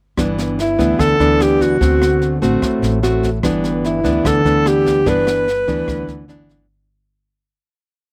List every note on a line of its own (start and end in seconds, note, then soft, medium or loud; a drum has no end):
0.17 0.75 G1 medium
0.17 0.97 G2 soft
0.17 0.58 E3 soft
0.17 0.58 B3 soft
0.17 0.58 D4 medium
0.17 kick soft
0.17 cross-stick soft
0.17 snare soft
0.38 snare soft
0.59 1.01 E4 medium
0.59 snare soft
0.78 0.98 D2 medium
0.78 1.16 E3 medium
0.78 1.16 B3 medium
0.78 1.16 D4 medium
0.78 kick soft
0.78 snare soft
0.99 1.18 D2 medium
0.99 1.78 D3 soft
0.99 1.44 A4 medium
0.99 kick soft
0.99 cross-stick soft
0.99 snare soft
1.19 1.76 D2 medium
1.19 1.77 E3 soft
1.19 1.77 B3 soft
1.19 1.78 D4 medium
1.19 snare soft
1.40 1.63 G4 medium
1.40 cross-stick medium
1.40 snare soft
1.61 2.42 F#4 medium
1.61 kick soft
1.61 snare soft
1.81 2.38 D2 medium
1.81 2.60 D3 soft
1.81 2.38 A3 soft
1.81 2.39 C4 soft
1.81 2.39 F#4 medium
1.81 kick medium
1.81 snare soft
2.02 cross-stick medium
2.02 snare soft
2.22 snare soft
2.42 2.61 A1 medium
2.42 2.99 A3 medium
2.42 3.00 C4 soft
2.42 3.00 F#4 medium
2.42 kick soft
2.42 snare soft
2.62 2.81 A1 medium
2.62 3.41 A2 soft
2.62 kick soft
2.62 cross-stick soft
2.62 snare soft
2.82 3.39 A1 medium
2.82 snare soft
3.03 3.29 A3 soft
3.03 3.29 C4 soft
3.03 3.29 F#4 medium
3.03 snare soft
3.23 kick soft
3.23 snare soft
3.43 4.00 G1 medium
3.43 4.23 G2 soft
3.43 4.01 E3 soft
3.43 4.01 B3 soft
3.43 4.01 D4 medium
3.43 kick medium
3.43 cross-stick medium
3.43 snare soft
3.64 snare soft
3.84 4.29 E4 medium
3.84 snare soft
4.04 4.23 D2 medium
4.04 4.41 E3 medium
4.04 4.41 B3 medium
4.04 4.42 D4 medium
4.04 kick soft
4.04 snare soft
4.24 4.44 D2 medium
4.24 5.04 D3 soft
4.24 4.69 A4 medium
4.24 kick soft
4.24 cross-stick medium
4.24 snare soft
4.44 5.02 D2 medium
4.44 5.03 E3 soft
4.44 5.03 B3 medium
4.44 5.03 D4 medium
4.44 snare soft
4.66 5.10 G4 medium
4.66 cross-stick medium
4.66 snare soft
4.86 kick soft
4.86 snare soft
5.06 5.63 G1 medium
5.06 5.85 G2 soft
5.06 5.46 E3 soft
5.06 5.47 B3 soft
5.06 5.47 D4 medium
5.06 6.29 B4 medium
5.06 kick medium
5.06 snare soft
5.27 cross-stick medium
5.27 snare soft
5.48 snare soft
5.68 5.86 D2 medium
5.68 6.25 E3 medium
5.68 6.25 B3 medium
5.68 6.25 D4 medium
5.68 kick soft
5.68 snare soft
5.88 6.06 D2 medium
5.88 6.67 D3 medium
5.88 kick soft
5.88 cross-stick soft
5.88 snare soft
6.07 6.64 D2 medium
6.07 snare soft
6.28 6.65 E3 soft
6.28 6.66 B3 soft
6.28 6.66 D4 medium
6.28 snare soft
6.49 kick soft
6.49 snare soft